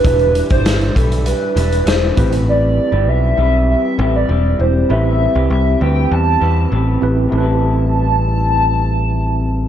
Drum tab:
HH |xxxxxxxxx-xxx-xx|----------------|----------------|----------------|
SD |----o-------o---|----------------|----------------|----------------|
BD |o--o--o-------o-|----------------|----------------|----------------|